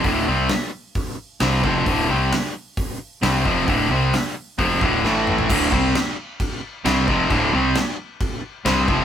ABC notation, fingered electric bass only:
X:1
M:4/4
L:1/8
Q:1/4=132
K:Dm
V:1 name="Fingered electric bass" clef=bass
D,,, C,, z4 C,, F,,, | D,,, C,, z4 C,, F,,, | D,,, C,, z2 F,,, D,,, A,,,2 | D,,, C,, z4 C,, F,,, |
D,,, C,, z4 C,, F,,, |]